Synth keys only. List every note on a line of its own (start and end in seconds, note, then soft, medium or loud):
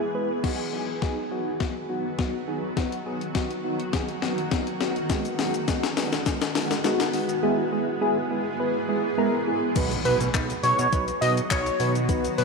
0.14 0.30 G#3 medium
0.14 0.30 B3 medium
0.14 0.30 E4 medium
0.14 0.30 B4 medium
0.43 0.59 F#3 loud
0.43 0.59 B3 loud
0.43 0.59 D#4 loud
0.43 0.59 F#4 loud
0.73 0.88 F#3 medium
0.73 0.88 B3 medium
0.73 0.88 D#4 medium
0.73 0.89 G#4 medium
1.02 1.17 F#3 loud
1.02 1.17 B3 loud
1.02 1.17 D#4 loud
1.02 1.18 G#4 loud
1.31 1.46 F#3 medium
1.31 1.47 B3 medium
1.31 1.47 D#4 medium
1.31 1.47 F#4 medium
1.60 1.76 F#3 medium
1.60 1.76 B3 medium
1.60 1.76 D#4 medium
1.60 1.76 F#4 medium
1.89 2.05 F#3 medium
1.89 2.05 B3 medium
1.89 2.05 D#4 medium
1.89 2.05 F#4 medium
2.18 2.34 F#3 loud
2.18 2.34 B3 loud
2.18 2.34 D#4 medium
2.18 2.34 F#4 loud
2.47 2.63 F#3 medium
2.47 2.63 B3 medium
2.47 2.63 D#4 medium
2.47 2.63 G#4 medium
2.76 2.92 F#3 loud
2.76 2.92 B3 loud
2.76 2.92 D#4 loud
2.76 2.92 F#4 loud
3.06 3.21 F#3 medium
3.06 3.21 B3 medium
3.06 3.21 D#4 medium
3.06 3.21 G#4 medium
3.35 3.50 F#3 loud
3.35 3.50 B3 loud
3.35 3.51 D#4 loud
3.35 3.51 F#4 loud
3.64 3.79 F#3 medium
3.64 3.80 B3 medium
3.64 3.80 D#4 medium
3.64 3.80 F#4 medium
3.93 4.09 F#3 medium
3.93 4.09 B3 medium
3.93 4.09 D#4 medium
3.93 4.09 G#4 medium
4.22 4.38 F#3 medium
4.22 4.38 B3 medium
4.22 4.38 D#4 medium
4.22 4.38 F#4 medium
4.51 4.67 F#3 loud
4.51 4.67 B3 loud
4.51 4.67 D#4 loud
4.51 4.67 F#4 loud
4.81 4.96 F#3 medium
4.81 4.96 B3 medium
4.81 4.96 D#4 medium
4.81 4.96 F#4 medium
5.10 5.25 G#3 loud
5.10 5.25 B3 loud
5.10 5.25 D#4 loud
5.10 5.25 F#4 loud
5.39 5.54 G#3 medium
5.39 5.54 B3 medium
5.39 5.54 D#4 medium
5.39 5.55 F#4 medium
5.68 5.83 G#3 loud
5.68 5.84 B3 loud
5.68 5.84 D#4 loud
5.68 5.84 F#4 loud
5.97 6.13 G#3 medium
5.97 6.13 B3 medium
5.97 6.13 D#4 medium
5.97 6.13 F#4 loud
6.26 6.42 G#3 medium
6.26 6.42 B3 medium
6.26 6.42 D#4 medium
6.26 6.42 F#4 medium
6.55 6.71 G#3 medium
6.55 6.71 B3 medium
6.55 6.71 D#4 medium
6.55 6.71 F#4 loud
6.85 7.00 G#3 loud
6.85 7.00 B3 loud
6.85 7.00 D#4 loud
6.85 7.00 F#4 loud
7.13 7.29 G#3 medium
7.13 7.29 B3 medium
7.13 7.29 D#4 medium
7.13 7.29 F#4 loud
7.43 7.58 G#3 loud
7.43 7.58 B3 loud
7.43 7.58 E4 loud
7.43 7.58 G#4 loud
7.72 7.87 G#3 medium
7.72 7.87 B3 medium
7.72 7.88 E4 medium
7.72 7.88 G#4 loud
8.01 8.16 G#3 loud
8.01 8.17 B3 loud
8.01 8.17 E4 loud
8.01 8.17 G#4 loud
8.30 8.46 G#3 medium
8.30 8.46 B3 medium
8.30 8.46 E4 medium
8.30 8.46 G#4 loud
8.59 8.75 G#3 medium
8.59 8.75 B3 medium
8.59 8.75 E4 medium
8.59 8.75 B4 loud
8.88 9.04 G#3 medium
8.88 9.04 B3 medium
8.88 9.04 E4 medium
8.88 9.04 G#4 loud
9.18 9.33 G#3 loud
9.18 9.33 B3 loud
9.18 9.33 E4 loud
9.18 9.33 A#4 loud
9.47 9.62 G#3 medium
9.47 9.62 B3 medium
9.47 9.62 E4 medium
9.47 9.62 G#4 loud
9.76 9.91 F#3 loud
9.76 9.91 B3 loud
9.76 9.91 D#4 loud
9.76 9.91 F#4 loud
9.76 9.91 B4 loud
10.05 10.20 F#3 medium
10.05 10.20 B3 medium
10.05 10.21 D#4 medium
10.05 10.21 F#4 medium
10.05 10.21 B4 medium
10.34 10.50 F#3 medium
10.34 10.50 B3 medium
10.34 10.50 D#4 medium
10.34 10.50 F#4 medium
10.34 10.50 B4 loud
10.63 10.79 F#3 medium
10.63 10.79 B3 medium
10.63 10.79 D#4 medium
10.63 10.79 F#4 medium
10.63 10.79 B4 medium
10.92 11.08 F#3 loud
10.92 11.08 B3 medium
10.92 11.08 D#4 medium
10.92 11.08 F#4 medium
10.92 11.08 B4 loud
11.22 11.37 F#3 medium
11.22 11.37 B3 medium
11.22 11.37 D#4 medium
11.22 11.37 F#4 medium
11.22 11.37 B4 medium
11.51 11.66 F#3 medium
11.51 11.66 B3 medium
11.51 11.66 D#4 medium
11.51 11.66 F#4 medium
11.51 11.66 B4 medium
11.80 11.95 F#3 medium
11.80 11.95 B3 medium
11.80 11.95 D#4 medium
11.80 11.95 F#4 medium
11.80 11.95 B4 medium
12.09 12.24 F#3 loud
12.09 12.24 B3 loud
12.09 12.24 D#4 loud
12.09 12.24 F#4 loud
12.09 12.24 B4 loud
12.38 12.44 F#3 medium
12.38 12.44 B3 medium
12.38 12.44 D#4 medium
12.38 12.44 F#4 medium
12.38 12.44 C#5 medium